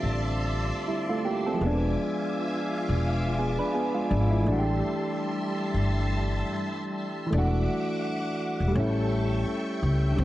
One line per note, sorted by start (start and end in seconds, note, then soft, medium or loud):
0.00 0.70 A1 medium
0.00 1.57 D3 medium
0.00 0.84 G3 medium
0.00 1.10 A3 medium
0.00 0.86 C4 medium
0.00 0.88 F4 medium
0.00 1.57 D5 medium
0.00 1.57 E5 medium
0.00 1.55 A5 medium
0.00 1.57 C6 medium
0.88 1.08 G3 soft
0.88 1.08 E4 medium
1.09 1.24 A3 medium
1.09 1.24 F4 medium
1.25 1.44 A#3 medium
1.25 1.44 G4 medium
1.46 1.80 C4 medium
1.46 1.79 A4 medium
1.54 3.32 F3 medium
1.54 3.34 G#3 medium
1.59 1.94 E1 medium
1.59 3.36 B3 medium
1.59 4.43 F4 medium
1.59 4.43 E5 medium
1.59 4.42 G#5 medium
1.59 4.43 D6 medium
1.66 3.38 D4 medium
2.89 3.56 E1 medium
3.38 3.58 B3 soft
3.38 3.58 G#4 medium
3.59 3.73 D4 medium
3.59 3.73 B4 medium
3.74 3.94 B3 medium
3.74 3.94 G#4 medium
3.94 4.09 G#3 medium
3.94 4.09 F4 medium
4.10 4.44 G#1 medium
4.10 4.30 F3 soft
4.10 4.30 D4 medium
4.31 4.65 G#3 soft
4.31 4.65 E4 medium
4.40 7.25 E3 medium
4.40 7.27 A3 medium
4.46 4.80 A1 medium
4.46 8.70 G3 medium
4.46 7.29 D4 medium
4.46 7.29 E5 medium
4.46 7.29 A5 medium
4.46 7.28 C6 medium
4.52 4.56 F#4 medium
4.59 7.34 G4 medium
5.75 6.42 G1 medium
7.26 8.69 E3 medium
7.31 7.66 E1 loud
7.31 8.71 A3 medium
7.31 8.73 D4 medium
7.31 8.73 E5 medium
7.31 8.73 F#5 medium
7.31 8.73 D6 medium
7.38 8.75 F#4 medium
8.60 8.74 E1 medium
8.68 10.11 G3 medium
8.68 10.13 A3 medium
8.75 9.42 A1 loud
8.75 10.15 C#4 medium
8.75 10.16 A4 medium
8.75 10.24 E5 medium
8.75 10.24 G5 medium
8.75 10.16 C#6 medium
8.79 10.17 E4 medium
9.83 10.16 C#2 medium
10.12 10.24 D3 medium
10.16 10.24 D2 loud
10.16 10.24 F3 medium
10.16 10.24 G3 medium
10.16 10.24 C4 medium
10.16 10.24 C6 medium